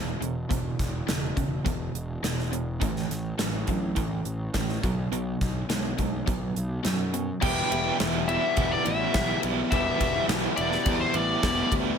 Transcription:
Already playing: E1 E2 B2
0.20 E1 E2 B2, closed hi-hat
0.49 E1 E2 B2, kick, closed hi-hat
0.79 E1, kick, snare, closed hi-hat
1.07 E1 E2 C#3, snare, closed hi-hat
1.36 E1 E2 C#3, kick, closed hi-hat
1.65 E1 E2 B2, kick, closed hi-hat
1.94 E1, closed hi-hat
2.23 E1 E2 B2, snare, closed hi-hat
2.39 snare
2.51 E2 B2, closed hi-hat
2.80 A1 A2 E3, kick, closed hi-hat
2.96 snare
3.10 A1, snare, closed hi-hat
3.38 A1 A2 F#3, snare, closed hi-hat
3.67 A1 A2 F#3, kick, closed hi-hat
3.95 A1 A2 E3, kick, closed hi-hat
4.25 A1, closed hi-hat
4.53 A1 A2 E3, kick, snare, closed hi-hat
4.69 snare
4.83 B1 B2 F#3, kick, closed hi-hat
5.11 B1 B2 F#3, closed hi-hat
5.41 B1, kick, snare, closed hi-hat
5.69 B1 B2 G#3, snare, closed hi-hat
5.98 B1 B2 G#3, kick, closed hi-hat
6.27 B1 B2 F#3, kick, closed hi-hat
6.56 B1, closed hi-hat
6.84 F#2 B2 F#3, snare, closed hi-hat
7.13 B2 F#3, closed hi-hat
7.41 E1 E2 B2 E3 G3 B3 E4 G4 G5, kick, crash
7.70 E1 E3 G3 B3 E4 G4, ride
7.84 G3 B3 E4
7.98 E1 E3 G3 B3 E4 G4, snare, ride
8.26 E3 G3 B3 E4 G4 E5, ride
8.30 E2 B2 E3
8.40 G3 B3 E4
8.57 E1 E2 B2 E3 G3 E4 G4, kick, ride
8.69 G3 B3 E4 D5
8.83 A1 E3 G3 B3 E4 G4 E5, ride
8.88 E3 G3
9.12 B1 E3 G3 B3 E4, kick, snare, ride
9.18 G4
9.41 B1 E3 G3 B3 E4 G4, ride
9.46 E3
9.55 G3 B3 E4
9.69 E1 E2 B2 E3 G3 B3 E4 E5, kick, ride
9.74 G4
9.98 E1 E3 G3 B3 E4 G4, kick, ride
10.03 E3
10.13 G3 B3 E4
10.27 B1 E3 G3 B3 E4, snare, ride
10.31 G4
10.56 E1 E2 B2 E3 G3 B3 E4 G4 D5, ride
10.60 E3
10.71 G3 B3 E4, snare
10.86 E2 B2 E3 G3 E4 G4, kick, ride
10.99 G3 B3 E4 C5
11.14 A1 E3 G3 B3 E4 G4 D5, ride
11.42 E1 E3 G3 B3 E4 G4, kick, snare, ride
11.71 D2 E3 G3 B3 E4 G4, kick, ride
11.84 G3 B3 E4

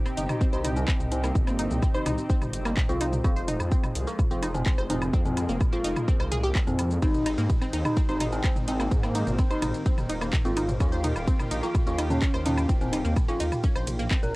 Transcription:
Already playing: C3 C4 D#4 G4
0.06 C4, low woodblock, shaker
0.17 G1 D#4, closed hi-hat, shaker
0.29 D#4, mid tom, low woodblock, shaker
0.41 C4, kick, shaker
0.53 C2 D#4 C5, shaker
0.65 D#4, closed hi-hat, mid tom, low woodblock, shaker
0.76 C4, shaker
0.88 C4, kick, clap, low woodblock, shaker
1.00 C2, mid tom, shaker
1.12 C4, closed hi-hat, shaker
1.24 A#3, low woodblock, shaker
1.35 G1, kick, mid tom, shaker
1.47 A#3 C4, low woodblock, shaker
1.59 D#4, closed hi-hat, shaker
1.71 C2, mid tom, shaker
1.83 C4, kick, low woodblock, shaker
1.95 D#4 C5, shaker
2.06 C2 D#4, closed hi-hat, mid tom, low woodblock, shaker
2.18 shaker
2.30 C4, kick, shaker
2.42 G1, mid tom, low woodblock, shaker
2.54 closed hi-hat, shaker
2.65 A#3, low woodblock, shaker
2.77 kick, clap, mid tom, shaker
2.89 C2 C4 F4, shaker
3.01 D#4, closed hi-hat, low woodblock, shaker
3.13 mid tom, shaker
3.24 F1 F3 G#3 C4 F4, kick, low woodblock, shaker
3.36 C5, shaker
3.48 D#4, closed hi-hat, mid tom, shaker
3.60 F2, low woodblock, shaker
3.72 C4, kick, shaker
3.84 mid tom, low woodblock, shaker
3.95 C2, closed hi-hat, shaker
4.07 A#3 F4, shaker
4.19 kick, mid tom, low woodblock, shaker
4.31 F1 C4 F4, shaker
4.43 D#4, closed hi-hat, low woodblock, shaker
4.54 C4, mid tom, shaker
4.66 C4, kick, clap, shaker
4.78 F1 C5, low woodblock, shaker
4.90 C4 D#4, closed hi-hat, mid tom, shaker
5.02 low woodblock, shaker
5.13 F2 A#3 C4, kick, shaker
5.25 C4, mid tom, shaker
5.37 closed hi-hat, low woodblock, shaker
5.49 F1 A#3, shaker
5.61 kick, mid tom, low woodblock, shaker
5.72 C4 F4, shaker
5.84 F1 D#4, closed hi-hat, shaker
5.96 mid tom, low woodblock, shaker
6.08 C4, kick, shaker
6.20 C2 C5, low woodblock, shaker
6.31 G#4, closed hi-hat, mid tom, shaker
6.43 G4, shaker
6.55 C4, kick, clap, low woodblock, shaker
6.67 F2 C4, mid tom, shaker
6.79 closed hi-hat, low woodblock, shaker
6.91 shaker
7.02 G#1 D#3 G#3 C4 D#4, kick, ride, low woodblock, shaker
7.14 mid tom, shaker
7.26 D#4, closed hi-hat, ride, low woodblock, shaker
7.38 G#2 A#3, shaker
7.50 kick, mid tom, ride, shaker
7.62 C4, low woodblock, shaker
7.73 D#2 D#4, closed hi-hat, ride, shaker
7.85 D#4, mid tom, low woodblock, shaker
7.97 C4, kick, ride, shaker
8.09 G#1 D#4 C5, shaker
8.21 D#4, closed hi-hat, mid tom, ride, low woodblock, shaker
8.32 C4, shaker
8.44 C4, kick, clap, ride, low woodblock, shaker
8.56 G#1, mid tom, shaker
8.68 C4 D#4, closed hi-hat, ride, shaker
8.80 A#3, low woodblock, shaker
8.91 G#2 A#3, kick, mid tom, ride, shaker
9.03 A#3 C4, low woodblock, shaker
9.15 D#4, closed hi-hat, ride, shaker
9.27 G#1, mid tom, shaker
9.39 C4, kick, ride, low woodblock, shaker
9.50 D#4 C5, shaker
9.62 G#1 D#4, closed hi-hat, mid tom, ride, low woodblock, shaker
9.74 shaker
9.86 C4, kick, ride, shaker
9.98 D#1, mid tom, low woodblock, shaker
10.09 D#4, closed hi-hat, ride, shaker
10.21 A#3, low woodblock, shaker
10.33 kick, clap, mid tom, ride, shaker
10.45 G#1 C4 F4, shaker
10.57 D#4, closed hi-hat, ride, low woodblock, shaker
10.69 mid tom, shaker
10.80 D#2 C#4 F4 G4, kick, ride, low woodblock, shaker
10.92 C5, shaker
11.04 D#4, closed hi-hat, mid tom, ride, shaker
11.16 D#1, low woodblock, shaker
11.28 C4, kick, ride, shaker
11.40 mid tom, low woodblock, shaker
11.51 A#1 D#4, closed hi-hat, ride, shaker
11.63 A#3 F4, shaker
11.75 kick, mid tom, ride, low woodblock, shaker
11.87 D#2 C#4 F4, shaker
11.98 D#4, closed hi-hat, ride, low woodblock, shaker
12.10 C#4, mid tom, shaker
12.22 C#4, kick, clap, ride, shaker
12.34 D#2 C5, low woodblock, shaker
12.46 C#4 D#4, closed hi-hat, mid tom, ride, shaker
12.58 low woodblock, shaker
12.69 D#1 C4, kick, ride, shaker
12.81 C4, mid tom, shaker
12.93 D#4, closed hi-hat, ride, low woodblock, shaker
13.05 D#2 A#3, shaker
13.16 kick, mid tom, ride, low woodblock, shaker
13.28 C#4 F4, shaker
13.40 D#2 D#4, closed hi-hat, ride, shaker
13.52 mid tom, low woodblock, shaker
13.64 C#4, kick, ride, shaker
13.76 A#1 C5, low woodblock, shaker
13.87 closed hi-hat, mid tom, ride, shaker
13.99 A#3, shaker
14.11 C4, kick, clap, ride, low woodblock, shaker
14.23 A#1 A#4, mid tom, shaker

